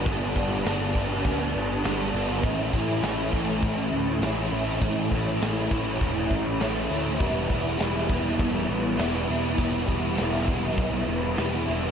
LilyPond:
<<
  \new Staff \with { instrumentName = "Overdriven electric guitar" } { \time 4/4 \key a \mixolydian \tempo 4 = 101 <g, d g b d'>8 <g b d'>8 <d g b d'>8 <g b d'>4. <d g b d'>8 <g b d'>8 | <a, e a cis' e'>8 <a cis' e'>8 <e a cis' e'>8 <a cis' e'>4. <e a cis' e'>8 <a cis' e'>8 | <a, e a cis' e'>8 <a cis' e'>8 <e a cis' e'>8 <a cis' e'>4. <e a cis' e'>8 <a cis' e'>8 | <e g b e'>8 <g b e'>8 <e g b e'>8 <g b e'>4. <e g b e'>8 <g b e'>8 |
<e g b e'>8 <g b e'>8 <e g b e'>8 <g b e'>4. <e g b e'>8 <g b e'>8 | }
  \new Staff \with { instrumentName = "Picked electric bass" } { \clef bass \time 4/4 \key a \mixolydian g,,8 g,,8 g,,8 g,,8 d,8 g,,8 g,,8 g,,8 | a,,8 a,,8 a,,8 a,,8 a,,8 d,8 a,,8 a,,8 | a,,8 a,,8 a,,8 a,,8 e,,8 a,,8 a,,8 d,8 | e,,8 e,,8 e,,8 e,,8 e,,8 a,,8 e,,8 e,,8 |
e,,8 e,,8 e,,8 e,,8 b,,8 e,,8 e,,8 e,,8 | }
  \new DrumStaff \with { instrumentName = "Drums" } \drummode { \time 4/4 <cymc bd>8 bd8 <cymc sn>8 bd8 <cymc bd>4 <cymc sn>4 | <cymc bd>8 bd8 <cymc sn>8 bd8 <cymc bd>4 <cymc sn>4 | <cymc bd>8 bd8 <cymc sn>8 bd8 <cymc bd>8 bd8 <cymc sn>4 | <cymc bd>8 bd8 <cymc sn>8 bd8 <cymc bd>4 <cymc sn>4 |
<cymc bd>8 bd8 <cymc sn>8 bd8 <cymc bd>4 <cymc sn>4 | }
>>